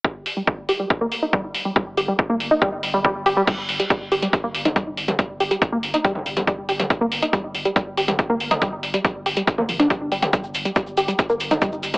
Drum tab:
CC |----------------|----------------|x---------------|----------------|
HH |--o---o---o---o-|--o---o---o---o-|x-oxx-oxx-oxx-ox|x-oxx-oxx-oxx-ox|
SH |----------------|----------------|----------------|----------------|
T2 |----------------|----------------|-----------o---o|---------o-o---o|
BD |o---o---o---o---|o---o---o---o---|o---o---o---o---|o---o---o---o---|

CC |----------------|----------------|----------------|
HH |x-oxx-oxx-oxx-ox|x-oxx-oxx-oxx-ox|x-oxx-oxx-oxx-ox|
SH |----------------|----------------|xxxxxxxxxxxxxxxx|
T2 |-----------o---o|---------o-o---o|-----------o---o|
BD |o---o---o---o---|o---o---o---o---|o---o---o---o---|